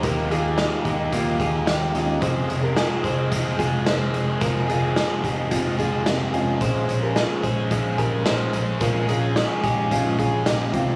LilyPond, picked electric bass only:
\new Staff \with { instrumentName = "Picked electric bass" } { \clef bass \time 4/4 \key bes \dorian \tempo 4 = 109 ees,8 ees,8. r16 ees,8 ees,8 ees,8 ees,8 ees,8 | f,,8 f,,8. r16 f,,8 f,,8 f,,8 f,,8 f,,8 | f,,8 f,,8. r16 f,,8 f,,8 f,,8 f,,8 f,,8 | bes,,8 bes,,8. r16 bes,,8 bes,,8 bes,,8 bes,,8 bes,,8 |
bes,,8 bes,,8. r16 bes,,8 bes,,8 bes,,8 bes,,8 c,8 | }